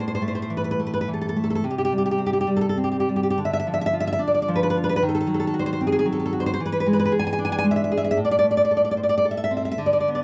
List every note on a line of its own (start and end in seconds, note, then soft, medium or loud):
0.00 1.60 A2 soft
0.00 0.06 C5 medium
0.08 0.14 C5 medium
0.15 0.22 C5 medium
0.22 0.78 A3 soft
0.28 0.34 C5 soft
0.35 0.41 C5 medium
0.42 0.51 C5 medium
0.50 1.07 E3 soft
0.57 0.63 B4 medium
0.64 0.70 B4 medium
0.71 0.79 B4 medium
0.80 1.35 A3 soft
0.87 0.92 B4 medium
0.94 1.00 B4 medium
1.01 1.08 B4 medium
1.08 1.64 E3 soft
1.14 1.20 A4 medium
1.21 1.28 A4 medium
1.29 1.36 A4 medium
1.36 1.64 A3 soft
1.44 1.49 A4 soft
1.50 1.54 A4 medium
1.55 1.63 A4 medium
1.64 3.34 C3 soft
1.70 1.77 G4 soft
1.78 1.84 G4 medium
1.85 1.92 G4 medium
1.92 2.46 G3 soft
1.98 2.04 G4 medium
2.06 2.10 G4 medium
2.11 2.19 G4 medium
2.18 2.76 C4 soft
2.26 2.32 G4 medium
2.33 2.39 G4 medium
2.41 2.48 G4 medium
2.47 3.08 G3 soft
2.57 2.60 A4 medium
2.61 2.68 A4 medium
2.69 2.77 A4 medium
2.78 3.38 C4 soft
2.84 2.91 G4 soft
2.92 2.99 G4 soft
3.00 3.08 G4 medium
3.09 3.39 G3 soft
3.16 3.22 G4 soft
3.23 3.29 G4 medium
3.30 3.38 G4 medium
3.38 4.97 D3 soft
3.45 3.52 E5 medium
3.53 3.58 E5 medium
3.60 3.67 E5 medium
3.67 4.47 F3 soft
3.74 3.80 E5 medium
3.81 3.85 E5 medium
3.86 3.93 E5 medium
3.93 4.74 F4 soft
4.00 4.06 E5 medium
4.07 4.11 E5 medium
4.13 4.20 E5 medium
4.19 5.00 D4 soft
4.28 4.33 D5 medium
4.34 4.41 D5 medium
4.42 4.48 D5 medium
4.48 5.01 F3 soft
4.56 4.62 B4 medium
4.63 4.69 B4 medium
4.70 4.76 B4 medium
4.77 5.03 F4 soft
4.84 4.88 B4 medium
4.89 4.95 B4 medium
4.96 5.02 B4 medium
5.02 6.54 D#3 medium
5.09 5.13 A4 medium
5.15 5.19 A4 medium
5.21 5.27 A4 medium
5.27 6.04 F#3 soft
5.34 5.38 A4 medium
5.40 5.46 A4 medium
5.47 5.54 A4 medium
5.54 6.32 F#4 medium
5.59 5.65 C5 medium
5.66 5.71 C5 medium
5.73 5.79 C5 medium
5.81 6.58 C4 soft
5.87 5.91 G#4 medium
5.92 5.98 G#4 medium
5.99 6.05 G#4 medium
6.06 6.58 F#3 medium
6.12 6.19 A4 medium
6.20 6.24 A4 medium
6.26 6.32 A4 medium
6.33 6.58 F#4 soft
6.40 6.45 C5 medium
6.46 6.52 C5 medium
6.54 6.59 C5 medium
6.60 8.15 E3 medium
6.66 6.71 B4 medium
6.72 6.78 B4 medium
6.80 6.86 B4 medium
6.86 7.38 G#3 soft
6.93 6.98 B4 medium
6.99 7.04 B4 medium
7.05 7.12 B4 medium
7.12 7.90 G#4 soft
7.19 7.25 G#5 medium
7.27 7.31 G#5 medium
7.33 7.39 G#5 medium
7.38 8.18 D4 soft
7.45 7.51 G#5 medium
7.52 7.57 G#5 medium
7.58 7.65 G#5 medium
7.64 8.18 G#3 soft
7.71 7.75 E5 medium
7.76 7.83 E5 medium
7.84 7.91 E5 medium
7.92 8.18 G#4 medium
7.97 8.03 E5 medium
8.04 8.10 E5 medium
8.11 8.18 E5 medium
8.17 9.76 A2 soft
8.25 8.30 D5 medium
8.31 8.37 D5 medium
8.39 8.45 D5 medium
8.43 9.25 A3 soft
8.51 8.56 D5 medium
8.57 8.63 D5 medium
8.65 8.71 D5 medium
8.71 9.24 A4 medium
8.77 8.83 D5 medium
8.85 8.90 D5 medium
8.91 8.97 D5 medium
8.97 9.03 C5 soft
9.03 9.08 D5 medium
9.09 9.16 D5 medium
9.18 9.25 D5 medium
9.25 9.80 A4 soft
9.31 9.36 E5 medium
9.37 9.43 E5 medium
9.44 9.52 E5 medium
9.51 9.78 C4 soft
9.57 9.64 E5 medium
9.65 9.70 E5 medium
9.72 9.80 E5 medium
9.78 10.24 D3 medium
9.86 9.92 D5 medium
9.93 9.99 D5 medium
10.00 10.09 D5 medium
10.08 10.24 B3 soft
10.15 10.21 D5 medium